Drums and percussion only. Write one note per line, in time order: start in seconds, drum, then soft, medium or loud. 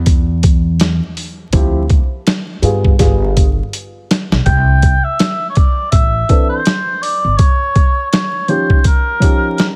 0.06 kick medium
0.06 closed hi-hat medium
0.43 kick medium
0.43 closed hi-hat medium
0.80 snare loud
0.80 closed hi-hat medium
1.17 open hi-hat medium
1.53 kick loud
1.53 closed hi-hat medium
1.90 kick medium
1.90 closed hi-hat medium
2.27 snare loud
2.27 closed hi-hat medium
2.63 closed hi-hat medium
2.85 kick medium
2.99 kick medium
2.99 snare soft
2.99 closed hi-hat medium
3.37 kick medium
3.37 closed hi-hat medium
3.73 closed hi-hat medium
4.11 snare medium
4.11 closed hi-hat medium
4.32 snare medium
4.46 kick loud
4.46 closed hi-hat medium
4.82 kick loud
4.82 closed hi-hat medium
5.19 snare loud
5.19 closed hi-hat medium
5.55 kick medium
5.55 closed hi-hat medium
5.92 kick medium
5.92 closed hi-hat medium
6.29 kick medium
6.29 closed hi-hat medium
6.66 snare loud
6.66 closed hi-hat medium
7.03 open hi-hat soft
7.39 kick loud
7.39 closed hi-hat medium
7.76 kick medium
7.76 closed hi-hat medium
8.13 snare loud
8.13 closed hi-hat medium
8.48 closed hi-hat medium
8.70 kick medium
8.84 kick medium
8.84 closed hi-hat medium
9.22 kick medium
9.22 closed hi-hat medium
9.58 snare loud
9.58 closed hi-hat medium